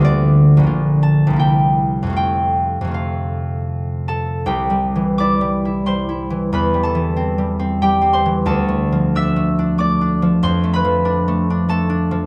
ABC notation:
X:1
M:3/4
L:1/8
Q:1/4=92
K:F
V:1 name="Harp"
d3 a g2 | g2 f3 [Aa] | [K:C] [Gg]2 [dd']2 [cc']2 | [Bb] [Aa]3 [Gg] [cc'] |
[Aa]2 [ee']2 [dd']2 | [cc'] [Bb]3 [Aa]2 |]
V:2 name="Harp" clef=bass
[D,,D,A,F]2 [B,,,D,B,F]2 [C,,C,B,E]2 | [F,,C,A,F]2 [F,,C,A,F]4 | [K:C] (3C,, G, E, (3E G, E (3G, E E, | (3E,, G, E, (3C G, C (3G, C E, |
(3D,, A, F, (3D A, D (3A, D F, | (3F,, A, F, (3D A, D (3A, D F, |]